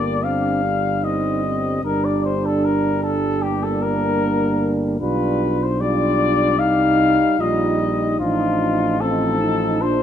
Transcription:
Already playing: G1 G3 A#3 D4 D5
0.24 C4 F5
0.63 D4
1.02 C4 D#4 D#5
1.44 C4
1.83 G1 G3 D4 A#4
2.05 D5
2.25 C5
2.46 A4
2.64 A#4
3.03 A4
3.42 A#3 G4
3.63 A4
3.82 A#4
5.00 B1 G3 D4 F4 B4
5.63 C5
5.81 G3 D4 F4 D5
6.59 C2 G3 D#4 F5
7.39 A#1 G3 D#4 F4 D#5
7.81 D#4
8.20 A1 F3 D4 D#4 F4
9.00 F3 C4 D#4 A4
9.41 D#4
9.81 A#1 F3 D4 F4 C5

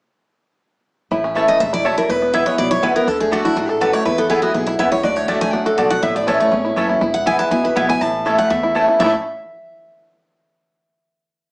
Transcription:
1.11 A1 A2 E4
1.24 C#4
1.35 E3 A3 C#4 E4 A4 C#5 A5
1.48 A3 D#5
1.60 E1 G#2 A4 E5
1.73 E4 D5
1.85 F#2 A3 E4 A4 C#5 A5
1.98 E4 A#4
2.09 E1 E2 E4 B4
2.22 B3
2.33 E3 G#3 B3 E4 B4 E5 G#5
2.46 B3 C#5
2.58 B1 B2 E4 D5
2.71 E4 C#5
2.82 C#2 E3 G#3 B3 E4 B4 G#5
2.95 B3 E4 A#4
3.07 D2 D3 D4 A4
3.20 A3 G#4
3.31 D3 A3 D4 F#4 A4 D5 A5
3.45 E4 F#4
3.56 A1 G#2 D4 F#4
3.69 A4
3.80 F#2 A3 F#4 B4 D5 A5
3.93 A3 C#5
4.05 E2 E4 B4
4.18 B3 A4
4.29 E3 G#3 B3 E4 G#4 B4 G#5
4.42 B3 F#4
4.54 B1 B2 E4 G#4
4.67 E4
4.79 C#2 C#3 B3 E4 B4 E5 G#5
4.92 E4 C#5
5.03 D2 D3 F#4 D5
5.16 A3 C#5
5.28 D2 D3 A3 D4 F#4 D5 E5 A5
5.41 A3 G#5
5.53 C#2 F#2 D4 F#5
5.66 F#4 A4
5.77 B1 B2 A3 F#4 A4 D5 A5
5.90 F#4 F#5
6.02 A1 A2 E4 E5
6.15 A3 D5
6.26 E3 A3 C#4 E4 C#5 A5
6.40 A3 C#5
6.51 G#1 E2 C#4
6.65 E4
6.76 F#1 E3 A3 C#4 E4 A4 C#5 A5
6.89 E4
7.01 E1 E2 E4
7.14 F#5
7.26 E3 G#3 B3 E4 B4 G#5
7.39 B3 A5
7.51 C#2 B2 E4 G#5
7.64 E4 B4
7.75 B1 E3 G#3 B3 E4 B4 E5 G#5
7.89 B3 E4 G#5
8.01 A1 A2 E4 A5
8.25 E3 A3 C#4 E4 A4 C#5 A5
8.38 A3 C#4 E4 F#5
8.50 E2 A4 E5
8.63 E4
8.75 E3 A3 C#4 E4 A4 C#5 A5
8.88 E4
8.99 A1 A2 E3 A3 C#4 E4 C#5 E5 A5
9.04 E4 A4

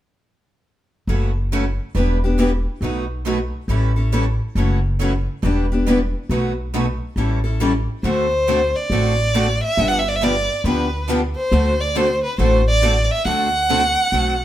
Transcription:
1.07 F#1 C#3 E3 F#3 A3 C#4 E4 F#4 A4
1.52 C#3 E3 F#3 A3 C#4 E4 F#4 A4
1.95 E1 E3 G3 B3 D4 E4 G4 B4
2.24 B3 D4 G4
2.38 E3 G3 B3 D4 E4 G4 B4
2.81 B1 B2 F#3 A3 D#4 F#4 B4
3.26 B2 F#3 A3 D#4 F#4 B4
3.68 A1 E3 G3 C#4 E4 A4
3.96 C#4 E4 A4
4.13 E3 G3 C#4 E4 A4
4.55 F#1 C#3 E3 F#3 A3 C#4 E4 F#4 A4
4.99 C#3 E3 F#3 A3 C#4 E4 F#4 A4
5.43 E1 E3 G3 B3 D4 E4 G4 B4
5.72 B3 D4 G4
5.87 E3 G3 B3 D4 E4 G4 B4
6.29 B1 B2 F#3 A3 D#4 F#4 B4
6.74 B2 F#3 A3 D#4 F#4 B4
7.16 A1 E3 G3 C#4 E4 A4
7.44 C#4 E4 A4
7.60 E3 G3 C#4 E4 A4
8.03 D2 D3 A3 C4 F#4 A4 C5
8.48 D3 A3 C4 F#4 A4
8.76 D5
8.90 A1 D3 A3 C4 F#4 A4
9.35 D3 A3 C4 F#4 A4
9.64 E5
9.77 G1 D3 F3 B3 D4 G4
9.88 F#5
9.99 E5
10.09 D5
10.16 E5
10.22 D3 F3 B3 D4 G4 D5
10.64 D2 D3 F3 B3 D4 G4 B4
11.09 D3 F3 B3 D4 G4
11.36 C5
11.52 D2 D3 A3 C4 F#4 A4
11.80 D5
11.95 D3 A3 C4 F#4 A4 C5
12.24 B4
12.38 A1 D3 A3 C4 F#4 A4 C5
12.68 D5
12.82 D3 A3 C4 F#4 A4
13.04 D5
13.11 E5
13.25 D2 D3 A3 C4 F#4 A4 F#5
13.70 D3 A3 C4 F#4 A4
14.12 B1 D3 A3 C4 F#4 A4

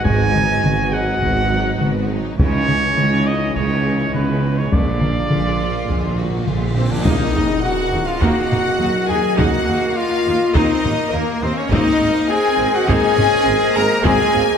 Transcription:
Already playing: G#3 F#4 B4 D#5
0.03 G#1 G#2 G#3 B3 F#4 G#4 G#5, taiko
0.33 F#3 D#4, taiko mid
0.62 G#1 G#2 G#3 B3 F#4, taiko mid
0.93 F#3 D#4 F#4 F#5
1.21 G#1 G#2 G#3 B3 F#4, taiko
1.51 F#3 D#4
1.79 G#1 G#2 G#3 B3 F#4, taiko mid
2.09 F#3 D#4
2.38 C#2 C#3 D#3 G#3 C#4 E4 C#5 D#5, taiko
2.66 E3 C#4 D#4, taiko mid
2.97 C#2 C#3 D#3 G#3 E4, taiko mid
3.25 E3 C#4 D#4 D#5
3.54 C#2 C#3 D#3 G#3 C#4 E4 C#5, taiko
3.85 E3 C#4 D#4
4.12 C#2 C#3 D#3 G#3 B3 E4 B4, taiko mid
4.42 E3 C#4 D#4
4.58 C#4 C#5
4.71 A#1 A#2 D3 G#3 D4 F4 A#4 D5 F5, taiko, cymbal swell
5.01 A#2 F3 A#3, taiko mid
5.11 A#2
5.18 A#2
5.25 A#1 A#2 D3
5.30 A#1 A#2 G#3 F4, taiko mid
5.49 A#2
5.57 A#2 F3
5.61 A#2 A#3
5.70 A#2
5.78 A#2
5.86 A#1 A#2 D3, taiko
5.91 A#2 G#3
6.00 A#2
6.08 A#2
6.16 A#2 F3 A#3 F#4
6.23 A#2
6.30 A#2
6.37 A#2
6.45 A#1 A#2 D3 G#3 F4, taiko mid
6.53 A#2
6.60 A#2
6.67 A#2
6.75 A#2 F3 A#3 C4 C5
6.83 A#2
6.90 A#2 D4 D5
6.99 A#2
7.04 D#2 A#3 D#4 A#4 D#5, taiko, tam-tam, sub drop
7.34 D#2 A#3 D#4
7.63 F#4 F#5
7.92 D#2 A#3 D#4
8.05 F4 F5
8.21 D#2 A#3 D#4 F#4 F#5, taiko
8.51 D#2 A#3 D#4, taiko low-mid
8.79 D#2 F#3 A#3 D#4
9.08 D#2 A#3 D#4 G#4 G#5
9.37 D#2 A#3 D#4 F#4 F#5, taiko
9.68 D#2 A#3 D#4
9.96 F4 F5
10.26 D#2 A#3 D#4
10.54 D#2 A#3 C4 D#4 D#5, taiko
10.83 D#2 A#3 D#4, taiko low-mid
11.11 D#2 A#3 D#4 A#4
11.42 D#2 A#3 C4 D#4 C5
11.56 C#4 C#5
11.70 G#1 G#3 A#3 C4 D#4 A#4 C5 D#5, taiko
12.00 G#1 A#3 C4
12.29 C4 G#4 G#5
12.58 G#1 A#3 C4
12.74 F#4 F#5
12.87 G#1 A#3 C4 D#4 G#4 G#5, taiko
13.16 G#1 A#3 C4 C#4, taiko low-mid
13.45 G#1 A#3 C4
13.75 G#1 A#3 C4 A#4 A#5
14.04 G#1 A#3 C4 G#4 G#5, taiko
14.33 G#1 A#3 C4

